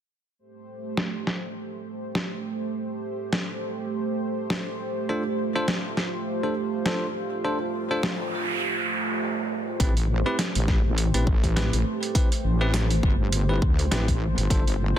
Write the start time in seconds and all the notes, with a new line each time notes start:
0.39 A3 G4 C5
0.97 snare
1.27 snare
2.15 snare
3.33 snare
4.50 snare
5.09 D4 F4 A4 C5
5.55 D4 F4 A4 C5
5.68 snare
5.97 snare
6.43 D4 F4 A4 C5
6.86 D4 F4 A4 C5, snare
7.45 D4 F4 A4 C5, noise sweep
7.91 D4 F4 A4 C5
8.03 snare
9.80 A1 A3 C4 E4 G4 B4 C5, kick, closed hi-hat
9.97 closed hi-hat
10.26 C4 E4 G4 B4
10.39 snare, closed hi-hat
10.55 A1, closed hi-hat
10.68 kick, snare
10.85 A1
10.98 closed hi-hat
11.14 A1 C4 E4 G4 B4, closed hi-hat
11.27 kick
11.44 kick, closed hi-hat
11.56 C4 E4 G4 B4, snare, closed hi-hat
11.73 A1, closed hi-hat
12.03 closed hi-hat
12.15 C4 E4 G4 B4, kick, closed hi-hat
12.32 closed hi-hat
12.44 A1
12.61 C4 E4 G4 B4
12.74 snare, closed hi-hat
12.90 closed hi-hat
13.03 G1, kick
13.32 closed hi-hat
13.49 C4 E4 G4 B4
13.62 D2, kick
13.79 closed hi-hat
13.91 A1 C4 E4 G4 B4, snare, closed hi-hat
14.08 kick, closed hi-hat
14.37 G1, closed hi-hat
14.50 G1 A3 D4 F4 A4 C5, kick, closed hi-hat
14.67 closed hi-hat